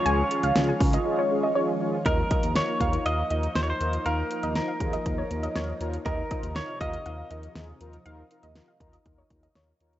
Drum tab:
HH |x-xxx-ox--------|x-xxx-xxx-xxx-xx|x-xxx-xxx-xxx-xx|x-xxx-xxx-xxx-xx|
SD |----o-----------|----o-------o---|----o-------o---|----o-------o---|
BD |------o---------|o-o---o---------|------o-o-------|o-o---o---------|

HH |x-xxx-xxx-xxx-xx|
SD |----o-------o---|
BD |------o-o-o-----|